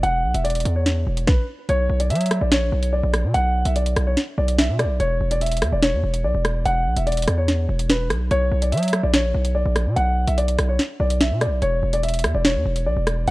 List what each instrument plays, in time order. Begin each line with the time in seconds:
0.03 808-style bass E1, grand piano F#5, closed hi-hat
0.24 808-style bass B1
0.34 808-style bass E1, grand piano E5, closed hi-hat
0.44 grand piano D5, closed hi-hat
0.50 closed hi-hat
0.55 closed hi-hat
0.60 closed hi-hat
0.65 808-style bass E2, closed hi-hat
0.76 grand piano C#5
0.86 snare, closed hi-hat
1.07 808-style bass E1
1.17 closed hi-hat
1.27 grand piano B4, kick, snare
1.69 808-style bass B1, grand piano C#5, closed hi-hat
1.90 808-style bass B1
2.00 grand piano D5, closed hi-hat
2.10 808-style bass F#3, grand piano E5, closed hi-hat
2.15 closed hi-hat
2.21 closed hi-hat
2.26 closed hi-hat
2.31 cross-stick, closed hi-hat
2.41 808-style bass A#1, grand piano D5
2.52 grand piano C#5, snare, closed hi-hat
2.72 808-style bass B1
2.83 closed hi-hat
2.93 grand piano D5
3.03 808-style bass A#1
3.14 cross-stick, closed hi-hat
3.24 808-style bass B2
3.34 808-style bass B1, grand piano F#5, closed hi-hat
3.65 808-style bass B1, grand piano E5, closed hi-hat
3.76 grand piano D5, closed hi-hat
3.86 closed hi-hat
3.96 808-style bass B1, cross-stick, closed hi-hat
4.07 grand piano C#5
4.17 snare, closed hi-hat
4.38 808-style bass B1, grand piano D5
4.48 closed hi-hat
4.58 grand piano E5, snare, closed hi-hat
4.69 808-style bass B2
4.79 grand piano D5, cross-stick, closed hi-hat
4.84 808-style bass B1
5.00 808-style bass E1, grand piano C#5, closed hi-hat
5.21 808-style bass E1
5.31 grand piano D5, closed hi-hat
5.41 grand piano E5, closed hi-hat
5.46 closed hi-hat
5.52 closed hi-hat
5.57 closed hi-hat
5.62 808-style bass E2, cross-stick, closed hi-hat
5.72 808-style bass E1, grand piano D5
5.83 grand piano C#5, snare, closed hi-hat
5.93 808-style bass E2
6.03 808-style bass E1
6.14 closed hi-hat
6.24 808-style bass B1, grand piano D5
6.34 808-style bass E1
6.45 cross-stick, closed hi-hat
6.65 808-style bass E1, grand piano F#5, closed hi-hat
6.86 808-style bass B1
6.97 808-style bass E1, grand piano E5, closed hi-hat
7.07 grand piano D5, closed hi-hat
7.12 closed hi-hat
7.17 closed hi-hat
7.22 closed hi-hat
7.28 808-style bass E2, cross-stick, closed hi-hat
7.38 grand piano C#5
7.48 snare, closed hi-hat
7.69 808-style bass E1
7.79 closed hi-hat
7.90 grand piano B4, snare, closed hi-hat
8.10 808-style bass B1, cross-stick, closed hi-hat
8.31 808-style bass B1, grand piano C#5, closed hi-hat
8.52 808-style bass B1
8.62 grand piano D5, closed hi-hat
8.72 808-style bass F#3, grand piano E5, closed hi-hat
8.78 closed hi-hat
8.83 closed hi-hat
8.88 closed hi-hat
8.93 cross-stick, closed hi-hat
9.03 808-style bass A#1, grand piano D5
9.14 grand piano C#5, snare, closed hi-hat
9.34 808-style bass B1
9.45 closed hi-hat
9.55 grand piano D5
9.65 808-style bass A#1
9.76 cross-stick, closed hi-hat
9.86 808-style bass B2
9.96 808-style bass B1, grand piano F#5, closed hi-hat
10.27 808-style bass B1, grand piano E5, closed hi-hat
10.38 grand piano D5, closed hi-hat
10.48 closed hi-hat
10.59 808-style bass B1, cross-stick, closed hi-hat
10.69 grand piano C#5
10.79 snare, closed hi-hat
11.00 808-style bass B1, grand piano D5
11.10 closed hi-hat
11.21 grand piano E5, snare, closed hi-hat
11.31 808-style bass B2
11.41 grand piano D5, cross-stick, closed hi-hat
11.46 808-style bass B1
11.62 808-style bass E1, grand piano C#5, closed hi-hat
11.83 808-style bass E1
11.93 grand piano D5, closed hi-hat
12.03 grand piano E5, closed hi-hat
12.09 closed hi-hat
12.14 closed hi-hat
12.19 closed hi-hat
12.24 808-style bass E2, cross-stick, closed hi-hat
12.35 808-style bass E1, grand piano D5
12.45 grand piano C#5, snare, closed hi-hat
12.55 808-style bass E2
12.65 808-style bass E1
12.76 closed hi-hat
12.86 808-style bass B1, grand piano D5
12.97 808-style bass E1
13.07 cross-stick, closed hi-hat
13.28 808-style bass E1, grand piano F#5, closed hi-hat